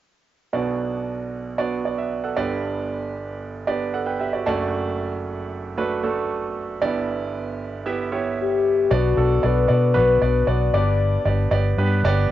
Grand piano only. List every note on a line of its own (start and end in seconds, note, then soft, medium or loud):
0.53 2.33 B1 soft
0.53 2.33 B2 soft
0.53 1.45 B3 medium
0.53 1.45 D4 medium
0.53 1.45 F#4 soft
0.53 1.45 D5 medium
1.58 1.81 B3 medium
1.58 1.81 D4 medium
1.58 1.81 F#4 medium
1.58 1.81 D5 medium
1.85 1.98 F#4 soft
1.85 1.97 D5 soft
1.98 2.23 E5 soft
2.24 2.49 A4 soft
2.24 2.49 F#5 soft
2.36 4.42 G1 medium
2.36 4.42 G2 medium
2.36 3.28 B3 medium
2.36 3.28 D4 medium
2.36 3.28 G4 medium
2.36 3.28 D5 medium
3.67 3.90 B3 medium
3.67 3.91 D4 medium
3.67 3.91 G4 medium
3.67 3.90 D5 medium
3.94 4.07 A4 soft
3.94 4.18 F#5 medium
4.06 4.19 B4 soft
4.06 4.18 G5 medium
4.20 4.33 G4 soft
4.20 4.33 E5 soft
4.20 4.44 G5 medium
4.33 4.45 F#4 soft
4.33 4.45 D5 soft
4.46 6.52 F#1 medium
4.46 6.52 F#2 medium
4.46 5.38 A3 medium
4.46 5.38 D4 medium
4.46 5.38 F#4 medium
4.46 5.38 D5 medium
4.46 4.71 A5 medium
5.77 6.00 A3 medium
5.77 6.00 D4 medium
5.77 6.00 F#4 medium
5.77 6.00 B4 medium
6.03 6.72 A3 medium
6.03 6.72 D4 medium
6.03 6.72 F#4 medium
6.03 6.72 A4 medium
6.81 8.87 G1 medium
6.81 8.87 G2 medium
6.81 7.73 B3 medium
6.81 7.73 E4 medium
6.81 7.73 G4 medium
6.81 7.73 D5 medium
7.86 8.09 B3 medium
7.86 8.09 E4 medium
7.86 8.09 G4 medium
7.86 8.09 E5 medium
8.12 8.81 B3 medium
8.12 8.81 E4 medium
8.12 8.81 G4 medium
8.12 8.81 C#5 medium
8.91 9.65 B2 soft
8.91 9.13 B3 medium
8.91 9.14 D4 medium
8.91 9.13 F#4 medium
8.91 9.14 D5 medium
9.17 9.40 B3 medium
9.17 9.40 D4 medium
9.17 9.40 F#4 soft
9.17 9.40 A4 medium
9.43 9.66 B3 medium
9.43 9.66 D4 medium
9.43 9.66 F#4 medium
9.43 9.66 D5 medium
9.68 9.91 B3 medium
9.68 9.91 D4 medium
9.68 9.91 F#4 medium
9.68 9.92 D5 medium
9.94 10.18 B3 medium
9.94 10.18 D4 medium
9.94 10.18 F#4 medium
9.94 10.17 B4 medium
10.21 10.44 B3 medium
10.21 10.44 D4 medium
10.21 10.44 F#4 soft
10.21 10.44 D5 medium
10.47 10.70 B3 medium
10.47 10.70 D4 medium
10.47 10.70 F#4 medium
10.47 10.70 D5 medium
10.74 11.48 G2 medium
10.74 11.19 B3 medium
10.74 11.19 D4 medium
10.74 11.19 G4 medium
10.74 11.19 D5 medium
11.25 11.48 B3 medium
11.25 11.48 D4 medium
11.25 11.48 G4 medium
11.25 11.48 D5 medium
11.51 11.74 B3 medium
11.51 11.74 D4 medium
11.51 11.74 G4 medium
11.51 11.74 D5 medium
11.78 12.01 B3 medium
11.78 12.01 D4 medium
11.78 12.01 G4 medium
11.78 12.01 B4 medium
12.05 12.27 B3 medium
12.05 12.27 D4 medium
12.05 12.27 G4 medium
12.05 12.27 D5 loud